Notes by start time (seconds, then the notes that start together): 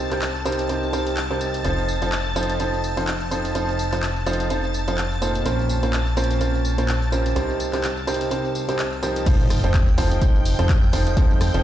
Already playing: C2 A5 A6
0.11 C3 C4 D#4 G4 A#4 C5, clap, closed hi-hat, tambourine
0.22 clap, closed hi-hat, tambourine
0.35 tambourine
0.45 C3 C4 D#4 G4 A#4 C5, closed hi-hat, tambourine
0.52 closed hi-hat
0.59 closed hi-hat, tambourine
0.69 C3 C4 D#4 G4 A#4 C5, closed hi-hat, tambourine
0.83 tambourine
0.93 C3 C4 D#4 G4 A#4 C5, closed hi-hat, tambourine
1.07 closed hi-hat, tambourine
1.17 clap, closed hi-hat, tambourine
1.30 C3 C4 D#4 G4 A#4 C5, tambourine
1.41 closed hi-hat, tambourine
1.54 closed hi-hat, tambourine
1.64 F1 F3 C4 D#4 F4 A4 C5, closed hi-hat, tambourine
1.78 tambourine
1.88 tambourine
2.02 F3 C4 D#4 F4 A4 C5, closed hi-hat, tambourine
2.12 clap, closed hi-hat, tambourine
2.26 tambourine
2.36 F3 C4 D#4 F4 A4 C5, closed hi-hat, tambourine
2.43 closed hi-hat
2.50 closed hi-hat, tambourine
2.60 F3 C4 D#4 F4 A4 C5, closed hi-hat, tambourine
2.74 tambourine
2.84 tambourine
2.97 F3 C4 D#4 F4 A4 C5, closed hi-hat, tambourine
3.07 clap, closed hi-hat, tambourine
3.21 tambourine
3.31 F3 C4 D#4 F4 A4 C5, closed hi-hat, tambourine
3.45 closed hi-hat, tambourine
3.55 F3 C4 D#4 F4 A4 C5, closed hi-hat, tambourine
3.69 tambourine
3.79 tambourine
3.92 F3 C4 D#4 F4 A4 C5, clap, closed hi-hat, tambourine
4.03 clap, closed hi-hat, tambourine
4.16 tambourine
4.26 F3 C4 D#4 F4 A4 C5, closed hi-hat, tambourine
4.33 closed hi-hat
4.40 closed hi-hat, tambourine
4.50 F3 C4 D#4 F4 A4 C5, closed hi-hat, tambourine
4.64 tambourine
4.74 tambourine
4.88 F3 C4 D#4 F4 A4 C5, closed hi-hat, tambourine
4.98 clap, closed hi-hat, tambourine
5.12 tambourine
5.22 A#2 C4 D#4 F4 A4 C5, closed hi-hat, tambourine
5.35 closed hi-hat, tambourine
5.45 A#1 A#2 C4 C#4 F4 A#4 C5, closed hi-hat, tambourine
5.59 tambourine
5.69 tambourine
5.83 A#2 C4 C#4 F4 A#4 C5, closed hi-hat, tambourine
5.93 clap, closed hi-hat, tambourine
6.07 tambourine
6.17 A#2 C4 C#4 F4 A#4 C5, closed hi-hat, tambourine
6.24 closed hi-hat
6.31 closed hi-hat, tambourine
6.41 A#2 C4 C#4 F4 A#4 C5, closed hi-hat, tambourine
6.55 tambourine
6.65 tambourine
6.78 A#2 C4 C#4 F4 A#4 C5, closed hi-hat, tambourine
6.88 clap, closed hi-hat, tambourine
7.02 tambourine
7.12 C3 C4 C#4 F4 A#4 C5, closed hi-hat, tambourine
7.26 closed hi-hat, tambourine
7.36 C2 C3 C4 D#4 G4 A#4 C5, closed hi-hat, tambourine
7.50 tambourine
7.60 closed hi-hat, tambourine
7.73 C3 C4 D#4 G4 A#4 C5, clap, closed hi-hat, tambourine
7.84 clap, closed hi-hat, tambourine
7.97 tambourine
8.07 C3 C4 D#4 G4 A#4 C5, closed hi-hat, tambourine
8.14 closed hi-hat
8.21 closed hi-hat, tambourine
8.31 C3 C4 D#4 G4 A#4 C5, closed hi-hat, tambourine
8.45 tambourine
8.55 tambourine
8.69 C3 C4 D#4 G4 A#4 C5, closed hi-hat, tambourine
8.79 clap, closed hi-hat, tambourine
8.93 tambourine
9.03 F3 C4 D#4 G4 A#4 C5, closed hi-hat, tambourine
9.16 closed hi-hat, tambourine
9.26 F1 F3 C4 D#4 F4 A4 C5 G5 G6, kick, closed hi-hat, crash, tambourine, sub drop
9.40 tambourine
9.50 cross-stick, open hi-hat, tambourine
9.64 F1 F3 C4 D#4 F4 A4 C5, closed hi-hat, tambourine
9.74 kick, clap, closed hi-hat, tambourine
9.88 tambourine
9.98 F1 F3 C4 D#4 F4 A4 C5, open hi-hat, tambourine
10.11 closed hi-hat, tambourine
10.22 F1 F3 C4 D#4 F4 A4 C5, kick, closed hi-hat, tambourine
10.35 tambourine
10.45 open hi-hat, tambourine
10.59 F1 F3 C4 D#4 F4 A4 C5, cross-stick, closed hi-hat, tambourine
10.69 kick, clap, closed hi-hat, tambourine
10.83 tambourine
10.93 F1 F3 C4 D#4 F4 A4 C5, open hi-hat, tambourine
11.07 closed hi-hat, tambourine
11.17 F1 F3 C4 D#4 F4 A4 C5, kick, closed hi-hat, tambourine
11.31 tambourine
11.41 cross-stick, open hi-hat, tambourine
11.54 F1 F3 C4 D#4 F4 A4 C5, closed hi-hat, tambourine